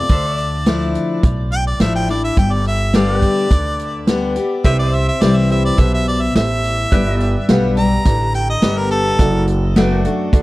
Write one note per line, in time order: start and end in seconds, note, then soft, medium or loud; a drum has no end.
0.00 0.92 D5 loud
0.09 0.95 D2 medium
0.09 1.18 D3 medium
0.09 2.35 A4 medium
0.09 0.37 C5 medium
0.09 2.36 E5 medium
0.09 kick loud
0.09 closed hi-hat medium
0.37 2.36 D5 medium
0.37 closed hi-hat medium
0.66 1.21 F3 medium
0.66 1.21 A3 medium
0.66 1.21 D4 medium
0.66 1.21 E4 loud
0.66 snare loud
0.66 closed hi-hat medium
0.95 closed hi-hat medium
1.23 1.72 B1 medium
1.23 2.32 A2 medium
1.23 kick loud
1.23 closed hi-hat medium
1.52 1.66 G5 loud
1.52 closed hi-hat medium
1.67 1.80 D5 medium
1.80 2.29 A1 medium
1.80 2.08 F3 medium
1.80 2.08 A3 medium
1.80 2.08 D4 medium
1.80 2.07 E4 medium
1.80 1.94 E5 medium
1.80 snare loud
1.80 closed hi-hat medium
1.96 2.09 G5 medium
2.08 2.37 D4 medium
2.08 2.36 E4 medium
2.08 2.23 D5 medium
2.08 closed hi-hat medium
2.24 2.37 E5 medium
2.37 3.23 G1 medium
2.37 3.45 G2 medium
2.37 2.55 G5 medium
2.37 kick loud
2.37 closed hi-hat medium
2.54 2.66 D5 medium
2.65 2.94 E5 medium
2.65 closed hi-hat medium
2.94 3.48 D3 medium
2.94 3.49 G3 medium
2.94 3.48 B3 medium
2.94 3.49 G4 medium
2.94 3.20 A4 medium
2.94 4.64 D5 medium
2.94 4.06 D5 medium
2.94 3.21 F5 medium
2.94 snare loud
2.94 closed hi-hat medium
3.20 4.63 B4 medium
3.20 4.64 G5 medium
3.20 kick medium
3.20 closed hi-hat medium
3.51 4.36 D2 medium
3.51 4.07 D3 medium
3.51 kick loud
3.51 closed hi-hat medium
3.79 closed hi-hat medium
4.07 4.35 D3 medium
4.07 4.36 G3 medium
4.07 4.36 B3 medium
4.07 4.35 G4 medium
4.07 snare loud
4.07 closed hi-hat medium
4.36 4.64 B3 soft
4.36 4.64 G4 medium
4.36 closed hi-hat medium
4.64 5.07 C2 medium
4.64 5.73 C3 medium
4.64 5.08 G4 loud
4.64 4.85 B4 medium
4.64 5.08 C5 medium
4.64 4.91 D5 medium
4.64 4.78 E5 loud
4.64 5.08 E5 loud
4.64 6.91 G5 medium
4.64 kick loud
4.64 closed hi-hat medium
4.79 4.96 D5 medium
4.85 6.90 C5 medium
4.91 6.90 E5 medium
4.91 5.07 E5 medium
4.91 closed hi-hat medium
5.09 5.24 E5 medium
5.21 5.70 C2 medium
5.21 5.76 E3 medium
5.21 5.76 G3 medium
5.21 5.76 C4 medium
5.21 5.76 E4 medium
5.21 5.43 G4 medium
5.21 5.43 C5 medium
5.21 5.39 D5 medium
5.21 5.43 E5 medium
5.21 snare loud
5.21 closed hi-hat medium
5.37 5.50 E5 medium
5.50 5.72 G4 medium
5.50 5.72 C5 medium
5.50 5.72 E5 medium
5.50 5.64 E5 medium
5.50 closed hi-hat medium
5.65 5.82 D5 medium
5.78 6.27 B1 medium
5.78 6.32 B2 medium
5.78 6.21 G4 medium
5.78 6.21 C5 medium
5.78 6.22 E5 medium
5.78 5.93 E5 medium
5.78 kick loud
5.78 closed hi-hat medium
5.94 6.07 E5 medium
6.07 6.24 D5 medium
6.07 closed hi-hat medium
6.22 6.35 E5 medium
6.35 6.84 A1 medium
6.35 6.89 A2 medium
6.35 6.78 G4 medium
6.35 6.78 C5 medium
6.35 6.78 E5 medium
6.35 7.46 E5 loud
6.35 snare loud
6.35 closed hi-hat medium
6.64 closed hi-hat medium
6.92 7.35 G1 medium
6.92 8.00 G2 medium
6.92 7.35 G4 medium
6.92 7.35 B4 medium
6.92 9.17 B4 medium
6.92 7.35 D5 loud
6.92 7.19 E5 medium
6.92 9.18 G5 medium
6.92 kick loud
6.92 closed hi-hat medium
7.19 9.18 D5 medium
7.19 closed hi-hat medium
7.49 7.98 B1 medium
7.49 7.76 D3 medium
7.49 7.76 G3 loud
7.49 7.77 B3 medium
7.49 7.70 G4 medium
7.49 7.76 G4 medium
7.49 7.70 B4 medium
7.49 7.71 F5 loud
7.49 snare loud
7.49 closed hi-hat medium
7.77 8.05 B3 soft
7.77 8.05 G4 medium
7.77 7.99 G4 medium
7.77 7.99 B4 medium
7.77 7.99 D5 medium
7.77 8.33 A#5 loud
7.77 closed hi-hat medium
8.05 8.54 A1 medium
8.05 8.61 D3 medium
8.05 8.48 G4 medium
8.05 8.49 B4 medium
8.05 8.49 D5 medium
8.05 kick loud
8.05 closed hi-hat medium
8.34 8.48 G5 loud
8.34 closed hi-hat medium
8.50 8.79 D#5 loud
8.62 9.11 G1 medium
8.62 9.16 D3 medium
8.62 9.17 G3 medium
8.62 9.17 B3 medium
8.62 9.05 G4 medium
8.62 9.17 G4 loud
8.62 9.05 B4 medium
8.62 9.06 D5 medium
8.62 snare loud
8.62 closed hi-hat medium
8.78 8.90 A#4 loud
8.91 9.46 A4 loud
8.91 closed hi-hat medium
9.19 10.05 F#1 medium
9.19 10.28 F#2 medium
9.19 9.62 F#4 loud
9.19 9.62 A4 medium
9.19 9.63 D5 loud
9.19 kick loud
9.19 closed hi-hat medium
9.47 closed hi-hat medium
9.76 10.03 F#3 medium
9.76 10.04 A3 medium
9.76 10.02 B3 medium
9.76 10.04 D4 loud
9.76 9.98 F#4 medium
9.76 10.04 F#4 medium
9.76 9.98 A4 medium
9.76 9.98 B4 loud
9.76 10.42 D5 medium
9.76 9.99 G5 medium
9.76 snare loud
9.76 closed hi-hat medium
9.99 10.42 A3 medium
9.99 10.42 F#5 medium
10.04 10.33 D4 medium
10.04 10.26 F#4 medium
10.04 10.32 F#4 medium
10.04 10.26 A4 medium
10.04 10.26 D5 medium
10.04 closed hi-hat medium
10.33 10.42 D2 medium
10.33 10.42 D3 loud
10.33 10.42 F#4 medium
10.33 10.42 A4 medium
10.33 10.42 D5 loud
10.33 kick loud
10.33 closed hi-hat medium